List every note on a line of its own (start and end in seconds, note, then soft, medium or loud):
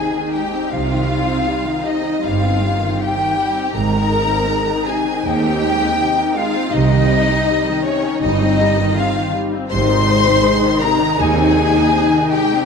0.00 0.14 C3 medium
0.00 3.71 C4 medium
0.00 3.71 D#4 medium
0.00 3.72 D#4 medium
0.00 0.33 G#4 medium
0.00 0.32 G#5 medium
0.00 0.35 G#5 medium
0.15 0.34 D#3 medium
0.32 0.53 G#3 medium
0.32 0.71 G4 medium
0.32 0.70 G5 medium
0.53 0.72 C4 medium
0.70 1.35 C2 medium
0.70 1.34 C3 medium
0.70 0.90 C3 medium
0.70 1.86 F4 medium
0.70 1.85 F5 medium
0.70 1.87 F5 medium
0.90 1.10 D#3 medium
1.08 1.28 G3 medium
1.28 1.47 C4 medium
1.47 1.67 G3 medium
1.66 1.85 D#3 medium
1.84 2.04 C3 medium
1.84 2.23 D#4 medium
1.84 2.23 D#5 medium
1.84 2.26 D#5 medium
2.03 2.23 D#3 medium
2.21 2.88 G1 medium
2.21 2.87 G2 medium
2.21 2.40 G3 medium
2.21 2.98 F4 medium
2.21 3.00 F5 medium
2.21 3.04 F5 medium
2.41 2.61 C4 medium
2.59 2.80 G3 medium
2.79 2.99 D#3 medium
2.97 3.18 C3 medium
2.97 3.75 G4 medium
2.97 3.75 G5 medium
3.02 3.50 G5 medium
3.16 3.36 D#3 medium
3.34 3.55 G3 medium
3.54 3.74 C4 medium
3.73 4.37 G#1 medium
3.73 4.37 G#2 medium
3.73 3.91 C3 medium
3.73 9.54 C4 medium
3.73 9.65 D#4 medium
3.73 9.54 D#4 medium
3.73 4.86 A#4 loud
3.73 4.84 A#5 loud
3.73 4.90 A#5 loud
3.93 4.12 D#3 medium
4.10 4.30 G#3 medium
4.28 4.48 C4 medium
4.48 4.68 G#3 medium
4.67 4.86 D#3 medium
4.85 5.05 C3 medium
4.85 5.24 G#4 medium
4.85 5.25 G#5 medium
4.85 5.27 G#5 medium
5.05 5.25 D#3 medium
5.23 5.87 D#2 medium
5.23 5.42 G#3 medium
5.23 6.35 G4 medium
5.23 6.38 G5 loud
5.23 6.36 G5 loud
5.44 5.62 C4 medium
5.63 5.81 G#3 medium
5.82 6.00 D#3 medium
6.00 6.18 C3 medium
6.17 6.36 D#3 medium
6.35 6.54 G#3 medium
6.35 6.71 F4 medium
6.35 6.72 F5 loud
6.35 6.75 F5 medium
6.53 6.72 C4 medium
6.71 7.34 C2 medium
6.71 6.89 C3 medium
6.71 7.34 C3 medium
6.71 7.84 D#4 medium
6.71 7.84 D#5 loud
6.71 7.85 D#5 loud
6.89 7.09 D#3 medium
7.08 7.27 G3 medium
7.27 7.46 C4 medium
7.47 7.66 G3 medium
7.66 7.85 D#3 medium
7.84 8.03 C3 medium
7.84 8.21 C#4 medium
7.84 8.21 C#5 loud
7.84 8.24 C#5 medium
8.04 8.22 D#3 medium
8.20 8.84 G1 medium
8.20 8.84 G2 medium
8.20 8.40 G3 medium
8.20 8.96 D#4 medium
8.20 8.95 D#5 loud
8.20 8.98 D#5 loud
8.42 8.60 C4 medium
8.60 8.78 G3 medium
8.77 8.96 D#3 medium
8.94 9.16 C3 medium
8.94 9.32 F4 medium
8.94 9.34 F5 medium
8.98 9.35 F5 loud
9.16 9.34 D#3 medium
9.34 9.52 G3 medium
9.52 9.71 C4 medium
9.69 10.32 G#1 medium
9.69 10.32 G#2 medium
9.69 9.88 C3 medium
9.69 12.65 C3 medium
9.69 12.65 D#4 medium
9.69 10.78 C5 loud
9.69 10.78 C6 loud
9.69 10.84 C6 loud
9.89 10.07 D#3 medium
10.07 10.26 G#3 medium
10.25 10.44 C4 medium
10.44 10.63 G#3 medium
10.64 10.83 D#3 medium
10.81 11.01 C3 medium
10.81 11.19 A#4 loud
10.81 11.19 A#5 loud
10.81 11.21 A#5 loud
11.00 11.19 D#3 medium
11.19 11.80 D#2 loud
11.19 11.80 D#2 medium
11.19 11.36 G#3 medium
11.19 12.31 G#4 loud
11.19 12.31 G#5 loud
11.36 11.55 C4 medium
11.56 11.74 G#3 medium
11.73 11.92 D#3 medium
11.92 12.11 C3 medium
12.11 12.30 D#3 medium
12.29 12.50 G#3 medium
12.29 12.65 G4 loud
12.29 12.65 G5 loud
12.29 12.65 G5 medium
12.50 12.65 C4 medium